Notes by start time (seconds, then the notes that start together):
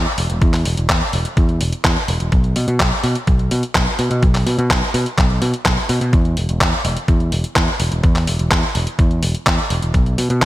0.06 closed hi-hat
0.18 E1, open hi-hat
0.30 E1, closed hi-hat
0.42 E2, kick, closed hi-hat
0.54 clap, open hi-hat
0.65 E1, open hi-hat
0.77 E1, closed hi-hat
0.89 E2, kick, clap, closed hi-hat
1.01 closed hi-hat
1.13 E1, open hi-hat
1.25 closed hi-hat
1.37 E2, kick, closed hi-hat
1.49 closed hi-hat
1.61 E1, open hi-hat
1.73 closed hi-hat
1.84 E2, kick, clap, closed hi-hat
1.96 closed hi-hat
2.08 E1, open hi-hat
2.20 E1, closed hi-hat
2.32 B1, kick, closed hi-hat
2.44 closed hi-hat
2.56 B2, open hi-hat
2.68 B2, closed hi-hat
2.80 B1, kick, clap
2.92 closed hi-hat
3.03 B2, open hi-hat
3.15 closed hi-hat
3.27 B1, kick, closed hi-hat
3.39 closed hi-hat
3.51 B2, open hi-hat
3.63 closed hi-hat
3.75 B1, kick, clap, closed hi-hat
3.87 closed hi-hat
3.99 B2, open hi-hat
4.11 B2, closed hi-hat
4.23 B1, kick, closed hi-hat
4.35 clap, open hi-hat
4.46 B2, open hi-hat
4.58 B2, closed hi-hat
4.70 B1, kick, clap, closed hi-hat
4.82 closed hi-hat
4.94 B2, open hi-hat
5.06 closed hi-hat
5.18 B1, kick, clap, closed hi-hat
5.30 closed hi-hat
5.42 B2, open hi-hat
5.54 closed hi-hat
5.65 B1, kick, clap, closed hi-hat
5.77 closed hi-hat
5.89 B2, open hi-hat
6.01 B2, closed hi-hat
6.13 E2, kick, closed hi-hat
6.25 closed hi-hat
6.37 E1, open hi-hat
6.49 E1, closed hi-hat
6.61 E2, kick, clap, closed hi-hat
6.73 closed hi-hat
6.85 E1, open hi-hat
6.97 closed hi-hat
7.08 E2, kick, closed hi-hat
7.20 closed hi-hat
7.32 E1, open hi-hat
7.44 closed hi-hat
7.56 E2, kick, clap, closed hi-hat
7.68 closed hi-hat
7.80 E1, open hi-hat
7.91 E1, closed hi-hat
8.03 E2, kick, closed hi-hat
8.15 clap, open hi-hat
8.27 E1, open hi-hat
8.39 E1, closed hi-hat
8.51 E2, kick, clap, closed hi-hat
8.63 closed hi-hat
8.75 E1, open hi-hat
8.87 closed hi-hat
8.99 E2, kick, closed hi-hat
9.11 closed hi-hat
9.23 E1, open hi-hat
9.35 closed hi-hat
9.46 E2, kick, clap
9.59 closed hi-hat
9.70 E1, open hi-hat
9.82 E1, closed hi-hat
9.94 B1, kick, closed hi-hat
10.06 closed hi-hat
10.18 B2, open hi-hat
10.30 B2, closed hi-hat
10.42 B1, kick, clap